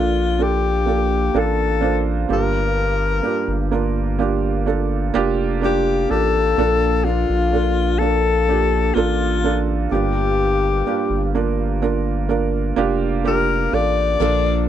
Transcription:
Already playing: analog synth bass A#1, felt piano A#2 A#3 D4 F4 A4, alto saxophone F4
0.39 felt piano A#3 D4 F4 A4
0.43 alto saxophone G4
0.86 felt piano A#3 D4 F4 A4
1.34 analog synth bass A1, felt piano A#3 D4 F4 A4
1.39 alto saxophone A4
1.81 felt piano A#3 D4 F4 C5
2.29 analog synth bass G1, felt piano G2 A#3 D4 F4 G4
2.33 alto saxophone A#4
3.23 felt piano A#3 D4 F4 G4
3.48 analog synth bass G1
3.71 felt piano A#3 D4 F4 A#4
4.19 felt piano A#3 D4 F4 G4
4.66 felt piano A#3 D4 F4 A4
5.14 analog synth bass F1, felt piano A#3 D4 F4 G4
5.62 felt piano A#3 D4 F4 G4, alto saxophone G4
6.10 analog synth bass A1, felt piano A#3 D4 F4 G4, alto saxophone A4
6.58 analog synth bass A#1, felt piano A#2 A#3 D4 F4 A4
7.05 felt piano A#3 D4 F4 A#4, alto saxophone F4
7.30 analog synth bass A#1
7.52 felt piano A#3 D4 F4 A4
7.99 felt piano A#3 D4 F4 A4, alto saxophone A4
8.48 felt piano A#3 D4 F4 G4
8.94 analog synth bass A1, felt piano A#3 D4 F4 A4, alto saxophone F4
9.44 felt piano A#3 D4 F4 A4
9.91 analog synth bass G1, felt piano G2 A#3 D4 F4 G4, alto saxophone G4
10.86 felt piano A#3 D4 F4 G4
11.10 analog synth bass G1
11.35 felt piano A#3 D4 F4 A#4
11.82 felt piano A#3 D4 F4 A#4
12.29 felt piano A#3 D4 F4 A#4
12.76 analog synth bass F1, felt piano A#3 D4 F4 G4
13.24 felt piano A#3 D4 F4 G4, alto saxophone A#4
13.72 analog synth bass A1, felt piano A#3 D4 F4 A4, alto saxophone D5
14.20 analog synth bass A#1, steel-string acoustic guitar A#2 D3 F3 A#3 D4 A4, felt piano A#2 A#3 D4 F4 A4

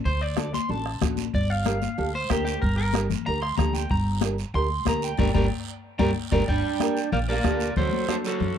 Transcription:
0.05 upright bass D2, clean electric guitar C5, bombo low, long guiro
0.21 clean electric guitar D5
0.36 nylon-string guitar D4 F#4 A4, bombo rim, high conga, short guiro
0.54 clean electric guitar C6, high conga, short guiro
0.69 upright bass A1, nylon-string guitar D4 F#4 A4, clean electric guitar A5, long guiro
0.86 bombo rim, high conga
1.01 upright bass A1, nylon-string guitar D4 F#4 A4, bombo low, bombo rim, high conga, low conga, short guiro
1.17 high conga, short guiro
1.34 upright bass G1, clean electric guitar D5, bombo low, high conga, long guiro
1.50 clean electric guitar F5
1.65 nylon-string guitar D4 G4 A#4, bombo rim, high conga, short guiro
1.82 high conga, short guiro
1.98 upright bass D2, nylon-string guitar D4 G4 A4, long guiro
2.14 clean electric guitar C5, high conga
2.30 upright bass D2, nylon-string guitar D4 G4 A#4, clean electric guitar G4, bombo low, bombo rim, high conga, short guiro
2.45 clean electric guitar G4, short guiro
2.62 upright bass G1, clean electric guitar A#4, bombo low, high conga, long guiro
2.78 clean electric guitar A#4
2.94 nylon-string guitar D4 G4 A#4, bombo rim, high conga, short guiro
3.10 high conga, low conga, short guiro
3.26 upright bass D2, nylon-string guitar D4 G4 A#4, clean electric guitar A#5, long guiro
3.42 clean electric guitar C6, bombo rim, high conga
3.58 upright bass D2, nylon-string guitar D4 G4 A4, clean electric guitar A#5, bombo low, bombo rim, high conga, low conga, short guiro
3.73 clean electric guitar G5, high conga, short guiro
3.89 upright bass G1, clean electric guitar A#5, bombo low, high conga, long guiro
4.21 nylon-string guitar D4 G4 A#4, bombo rim, high conga, short guiro
4.38 short guiro
4.54 upright bass D2, nylon-string guitar D4 G4 A#4, clean electric guitar C6, long guiro
4.70 high conga
4.86 upright bass D2, nylon-string guitar D4 G4 A#4, clean electric guitar A#5, bombo low, bombo rim, high conga, short guiro
5.02 clean electric guitar G5, short guiro
5.17 upright bass G1, nylon-string guitar D4 G4 A#4, clean electric guitar D5 G5 A#5, bombo low, high conga, long guiro
5.34 upright bass G1, nylon-string guitar D4 G4 A#4, clean electric guitar D5 G5 A#5, bombo low, high conga, long guiro
5.99 upright bass G1, nylon-string guitar D4 G4 A#4, clean electric guitar D5 G5 A#5, bombo low, high conga, long guiro
6.32 upright bass G1, nylon-string guitar D4 G4 A#4, clean electric guitar D5 G5 A#5, bombo low, high conga, long guiro
6.48 upright bass G1, trombone D4, clean electric guitar D5 G5, bombo low, long guiro
6.80 nylon-string guitar D4 G4 A#4, bombo rim, high conga, short guiro
6.97 short guiro
7.12 upright bass A#1, trombone A#3, clean electric guitar D5 F5, low conga, long guiro
7.28 trombone A#3, nylon-string guitar D4 G4 A4, clean electric guitar A#4 D5
7.44 upright bass D2, nylon-string guitar D4 G4 A4, bombo low, bombo rim, high conga, short guiro
7.60 short guiro
7.76 upright bass D2, trombone F#3, clean electric guitar A4 C5, bombo low, low conga, long guiro
7.93 high conga
8.08 trombone F#3, nylon-string guitar D4 F#4 A4, clean electric guitar A4 C5, bombo rim, high conga, short guiro
8.24 trombone F#3, clean electric guitar F#4 A4, short guiro
8.40 upright bass F#2, low conga, long guiro

